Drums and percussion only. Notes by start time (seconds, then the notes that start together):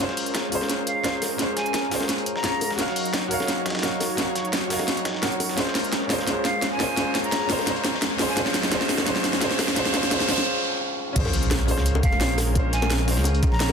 0.09 snare
0.17 closed hi-hat, open hi-hat
0.26 closed hi-hat
0.35 snare, closed hi-hat
0.52 closed hi-hat, open hi-hat
0.61 snare, high bongo
0.69 snare, closed hi-hat
0.87 closed hi-hat
1.04 snare, closed hi-hat
1.22 snare, closed hi-hat, open hi-hat, high bongo
1.39 snare, closed hi-hat
1.57 snare, closed hi-hat
1.66 closed hi-hat
1.74 snare, closed hi-hat
1.91 snare, closed hi-hat, open hi-hat
2.00 snare, high bongo
2.09 snare, closed hi-hat
2.18 closed hi-hat
2.26 closed hi-hat
2.36 snare
2.44 snare, closed hi-hat
2.61 closed hi-hat, open hi-hat, high bongo
2.70 snare
2.79 snare, closed hi-hat
2.88 snare
2.96 closed hi-hat, open hi-hat
3.05 closed hi-hat
3.13 snare, closed hi-hat
3.31 closed hi-hat, open hi-hat
3.40 snare, high bongo
3.48 snare, closed hi-hat
3.66 snare, closed hi-hat
3.70 snare, closed hi-hat
3.75 snare, closed hi-hat
3.79 snare, closed hi-hat
3.83 snare, closed hi-hat
4.00 snare, closed hi-hat, open hi-hat, high bongo
4.18 snare, closed hi-hat
4.35 snare, closed hi-hat
4.45 closed hi-hat
4.53 snare, closed hi-hat
4.70 snare, closed hi-hat, open hi-hat
4.79 snare, high bongo
4.88 snare, closed hi-hat
4.97 closed hi-hat
5.05 snare, closed hi-hat
5.14 snare
5.23 snare, closed hi-hat
5.32 closed hi-hat
5.40 closed hi-hat, open hi-hat, high bongo
5.49 snare
5.58 snare, closed hi-hat
5.67 snare
5.75 snare, closed hi-hat, open hi-hat
5.84 closed hi-hat
5.92 snare, closed hi-hat
6.10 snare, closed hi-hat, open hi-hat
6.18 snare, high bongo
6.27 snare, closed hi-hat
6.45 snare, closed hi-hat
6.62 snare, closed hi-hat
6.80 snare, closed hi-hat, open hi-hat, high bongo
6.97 snare, closed hi-hat
7.15 snare, closed hi-hat
7.24 closed hi-hat
7.32 snare, closed hi-hat
7.50 snare, closed hi-hat, open hi-hat
7.59 snare, high bongo
7.67 snare, closed hi-hat
7.76 closed hi-hat
7.84 snare, closed hi-hat
7.94 snare
8.02 snare, closed hi-hat
8.19 snare, closed hi-hat, open hi-hat, high bongo
8.29 snare
8.37 snare, closed hi-hat
8.46 snare
8.54 snare, closed hi-hat, open hi-hat
8.63 snare, closed hi-hat
8.71 snare, closed hi-hat
8.81 snare
8.89 snare, closed hi-hat, open hi-hat
8.98 snare, high bongo
9.06 snare, closed hi-hat
9.16 snare
9.24 snare, closed hi-hat
9.33 snare
9.41 snare, closed hi-hat
9.51 snare
9.59 snare, closed hi-hat, open hi-hat, high bongo
9.68 snare, closed hi-hat
9.76 snare, closed hi-hat
9.85 snare
9.94 snare, closed hi-hat
10.03 snare, closed hi-hat
10.11 snare, closed hi-hat
10.20 snare
10.29 snare, closed hi-hat, open hi-hat
10.38 snare, high bongo
11.16 kick, closed hi-hat, crash
11.25 snare, high bongo
11.33 closed hi-hat, open hi-hat
11.43 closed hi-hat
11.51 snare, closed hi-hat, high bongo
11.68 closed hi-hat, open hi-hat, high bongo
11.78 snare
11.86 closed hi-hat
11.95 high bongo
12.03 kick, closed hi-hat
12.12 snare, high bongo
12.21 snare, closed hi-hat
12.38 snare, closed hi-hat, open hi-hat, high bongo
12.55 kick, closed hi-hat, high bongo
12.73 snare, closed hi-hat
12.82 snare, closed hi-hat, high bongo
12.90 snare, closed hi-hat
13.00 high bongo
13.08 snare, closed hi-hat, open hi-hat
13.17 snare
13.24 closed hi-hat, high bongo
13.34 closed hi-hat
13.43 kick, closed hi-hat, high bongo
13.52 snare
13.60 snare, closed hi-hat